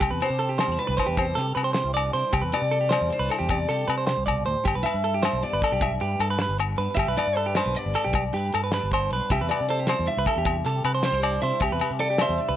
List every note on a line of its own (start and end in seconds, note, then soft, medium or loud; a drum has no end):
0.00 0.10 C2 medium
0.00 1.18 C3 medium
0.00 0.60 D4 medium
0.00 0.10 G4 medium
0.00 kick medium
0.00 closed hi-hat medium
0.00 low agogo medium
0.11 0.20 E2 medium
0.11 0.29 B4 medium
0.20 0.76 C5 medium
0.20 closed hi-hat soft
0.20 low agogo medium
0.25 1.38 G4 medium
0.30 0.63 C3 medium
0.39 0.49 A4 medium
0.39 closed hi-hat soft
0.49 0.59 G4 medium
0.58 1.75 G3 medium
0.58 0.71 D4 medium
0.58 0.77 C5 medium
0.58 snare medium
0.58 closed hi-hat medium
0.58 low agogo medium
0.68 0.77 E2 medium
0.68 0.98 E4 soft
0.78 1.96 D4 medium
0.78 1.15 B4 medium
0.78 closed hi-hat soft
0.87 0.97 C2 medium
0.87 0.97 B4 medium
0.97 1.75 E4 medium
0.97 1.07 C5 medium
0.97 kick medium
0.97 closed hi-hat soft
0.97 low agogo medium
1.06 1.33 E2 medium
1.06 1.26 G4 medium
1.17 2.32 C3 medium
1.17 1.37 C5 medium
1.17 kick medium
1.17 closed hi-hat medium
1.17 low agogo medium
1.35 1.54 C3 medium
1.35 2.55 G4 medium
1.35 1.54 A4 medium
1.35 snare soft
1.35 closed hi-hat soft
1.55 1.81 C3 medium
1.55 1.64 B4 medium
1.55 closed hi-hat soft
1.55 low agogo medium
1.64 1.72 C5 medium
1.73 2.92 G3 medium
1.73 2.15 E4 medium
1.73 1.93 C5 medium
1.73 snare medium
1.73 closed hi-hat medium
1.84 2.09 C2 medium
1.94 2.36 D4 medium
1.94 2.13 D5 medium
1.94 closed hi-hat soft
1.94 low agogo medium
2.13 2.22 C3 medium
2.13 2.33 E4 medium
2.13 2.32 C5 medium
2.13 closed hi-hat soft
2.33 2.42 C2 loud
2.33 3.50 C3 medium
2.33 2.42 G4 medium
2.33 kick medium
2.33 closed hi-hat medium
2.33 low agogo medium
2.42 2.51 E2 medium
2.42 2.61 B4 medium
2.52 3.69 G4 medium
2.52 3.07 D5 medium
2.52 closed hi-hat medium
2.52 low agogo medium
2.62 2.95 C3 medium
2.71 2.80 A4 medium
2.71 closed hi-hat medium
2.81 2.91 G4 medium
2.89 5.24 G3 medium
2.89 3.09 C5 medium
2.89 snare medium
2.89 closed hi-hat medium
2.89 low agogo medium
2.93 3.31 E4 medium
3.01 3.10 E2 medium
3.10 5.25 D4 medium
3.10 3.48 C5 medium
3.10 closed hi-hat soft
3.19 3.28 C2 medium
3.19 3.29 B4 medium
3.29 4.65 E4 medium
3.29 3.38 A4 medium
3.29 closed hi-hat soft
3.29 low agogo medium
3.39 3.65 E2 medium
3.39 3.58 G4 medium
3.49 4.07 C3 medium
3.49 3.69 D5 medium
3.49 kick medium
3.49 closed hi-hat medium
3.49 low agogo medium
3.69 3.85 C3 medium
3.69 4.85 G4 medium
3.69 3.87 A4 medium
3.69 snare soft
3.69 closed hi-hat medium
3.88 4.13 C3 medium
3.88 3.97 B4 medium
3.88 closed hi-hat soft
3.88 low agogo medium
3.98 4.05 C5 medium
4.07 4.27 C3 medium
4.07 4.25 C5 medium
4.07 snare medium
4.07 closed hi-hat medium
4.17 4.42 C2 medium
4.26 4.46 B2 medium
4.26 4.45 D5 medium
4.26 kick soft
4.26 closed hi-hat soft
4.26 low agogo medium
4.46 4.55 D2 medium
4.46 4.65 A2 medium
4.46 4.65 C5 medium
4.46 closed hi-hat soft
4.65 4.74 G1 medium
4.65 5.80 G2 medium
4.65 4.75 G4 loud
4.65 kick medium
4.65 closed hi-hat medium
4.65 low agogo medium
4.75 4.83 B1 medium
4.75 4.94 B4 medium
4.83 5.99 B4 medium
4.83 5.38 E5 loud
4.83 closed hi-hat soft
4.83 low agogo medium
4.94 5.28 G2 medium
5.04 5.14 A4 medium
5.04 closed hi-hat medium
5.14 5.24 G4 medium
5.23 6.38 G3 medium
5.23 5.62 D4 medium
5.23 5.42 C5 medium
5.23 snare medium
5.23 closed hi-hat medium
5.23 low agogo medium
5.33 5.42 B1 medium
5.43 6.58 B3 medium
5.43 5.79 D5 medium
5.43 closed hi-hat soft
5.53 5.61 G1 medium
5.53 5.63 B4 medium
5.62 6.40 D4 medium
5.62 5.72 A4 medium
5.62 kick medium
5.62 closed hi-hat medium
5.62 low agogo medium
5.72 5.97 B1 medium
5.72 5.91 G4 medium
5.80 6.97 G2 medium
5.80 5.93 E5 medium
5.80 kick medium
5.80 closed hi-hat medium
5.80 low agogo medium
6.00 6.18 G2 medium
6.00 6.20 G4 medium
6.00 6.96 B4 medium
6.00 closed hi-hat medium
6.19 6.45 G2 medium
6.19 6.30 A4 medium
6.19 closed hi-hat soft
6.19 low agogo medium
6.30 6.40 B4 medium
6.39 7.56 G3 medium
6.39 6.79 D4 medium
6.39 6.59 B4 medium
6.39 snare medium
6.39 closed hi-hat medium
6.49 6.74 G1 medium
6.58 6.96 B3 medium
6.58 muted clean electric guitar stroke medium
6.58 closed hi-hat soft
6.58 low agogo medium
6.78 6.87 G2 medium
6.78 7.57 D4 medium
6.78 6.97 B4 medium
6.78 closed hi-hat soft
6.94 7.06 G1 medium
6.94 8.14 G2 medium
6.94 7.07 G4 loud
6.94 7.15 E5 medium
6.94 kick medium
6.94 closed hi-hat medium
6.99 low agogo medium
7.07 7.16 B1 medium
7.07 7.27 B4 medium
7.16 8.34 B4 medium
7.16 7.36 D5 medium
7.16 closed hi-hat soft
7.16 low agogo medium
7.27 7.60 G2 medium
7.36 7.46 A4 medium
7.36 7.54 B4 medium
7.36 closed hi-hat medium
7.46 7.56 G4 medium
7.55 8.73 G3 medium
7.55 7.96 D4 medium
7.55 7.76 B4 medium
7.55 7.75 C5 medium
7.55 snare medium
7.55 closed hi-hat medium
7.55 low agogo medium
7.66 7.74 B1 medium
7.75 8.91 B3 medium
7.75 8.34 D5 medium
7.75 closed hi-hat soft
7.86 7.94 G1 loud
7.94 8.75 D4 medium
7.94 8.04 A4 medium
7.94 closed hi-hat medium
7.94 low agogo medium
8.04 8.30 B1 medium
8.04 8.23 G4 medium
8.13 9.31 G2 medium
8.13 kick medium
8.13 closed hi-hat medium
8.13 low agogo medium
8.33 8.51 G2 medium
8.33 8.52 G4 medium
8.33 9.29 B4 medium
8.33 closed hi-hat medium
8.53 8.79 G2 medium
8.53 8.63 A4 medium
8.53 closed hi-hat soft
8.53 low agogo medium
8.64 8.72 B4 medium
8.72 9.87 G3 medium
8.72 9.12 D4 medium
8.72 8.92 B4 medium
8.72 snare medium
8.72 closed hi-hat medium
8.83 9.08 G1 medium
8.91 9.29 B3 medium
8.91 9.11 C5 medium
8.91 kick medium
8.91 closed hi-hat soft
8.91 low agogo medium
9.10 9.20 B1 medium
9.10 9.89 D4 medium
9.10 9.30 B4 medium
9.10 closed hi-hat soft
9.30 9.39 C2 medium
9.30 10.44 C3 medium
9.30 9.40 G4 medium
9.30 9.48 E5 medium
9.30 kick medium
9.30 closed hi-hat medium
9.30 low agogo medium
9.41 9.49 E2 medium
9.41 9.59 B4 medium
9.49 10.65 G4 medium
9.49 9.68 D5 medium
9.49 closed hi-hat medium
9.49 low agogo medium
9.60 9.93 C3 medium
9.68 9.79 A4 medium
9.68 9.86 C5 medium
9.68 closed hi-hat medium
9.79 9.88 G4 medium
9.87 11.02 G3 medium
9.87 10.27 E4 medium
9.87 10.07 C5 medium
9.87 snare medium
9.87 closed hi-hat medium
9.87 low agogo medium
9.99 10.07 E2 medium
10.06 11.03 D4 medium
10.06 10.61 E5 medium
10.06 closed hi-hat soft
10.17 10.26 C2 loud
10.17 10.27 B4 medium
10.26 11.03 E4 medium
10.26 10.37 A4 medium
10.26 kick medium
10.26 closed hi-hat medium
10.26 low agogo medium
10.37 10.61 E2 medium
10.37 10.56 G4 medium
10.44 11.60 C3 medium
10.44 kick medium
10.44 closed hi-hat medium
10.44 low agogo medium
10.65 10.82 C3 medium
10.65 11.82 G4 medium
10.65 10.84 A4 medium
10.65 snare soft
10.65 closed hi-hat soft
10.84 11.09 C3 medium
10.84 10.94 B4 medium
10.84 closed hi-hat soft
10.84 low agogo medium
10.95 11.04 C5 medium
11.02 12.20 G3 medium
11.02 11.12 D4 medium
11.02 11.40 C5 medium
11.02 11.23 C5 medium
11.02 snare medium
11.02 closed hi-hat medium
11.12 11.38 C2 medium
11.12 11.42 E4 medium
11.22 11.64 D4 soft
11.22 11.42 D5 medium
11.22 closed hi-hat soft
11.22 low agogo medium
11.41 11.51 C3 medium
11.41 11.60 E4 medium
11.41 11.61 C5 medium
11.41 11.96 E5 medium
11.41 closed hi-hat medium
11.60 11.70 C2 medium
11.60 12.56 C3 medium
11.60 11.72 G4 medium
11.60 kick medium
11.60 closed hi-hat medium
11.60 low agogo medium
11.72 11.80 E2 medium
11.72 11.90 B4 medium
11.79 12.56 G4 medium
11.79 closed hi-hat medium
11.79 low agogo medium
11.90 12.24 C3 medium
11.99 12.10 A4 medium
11.99 12.19 D5 medium
11.99 closed hi-hat medium
12.10 12.19 G4 medium
12.18 12.56 G3 medium
12.18 12.39 C5 medium
12.18 12.56 E5 loud
12.18 snare loud
12.18 closed hi-hat medium
12.18 low agogo medium
12.29 12.38 E2 medium
12.38 12.56 D4 medium
12.38 closed hi-hat soft
12.49 12.56 C2 medium
12.49 12.56 B4 medium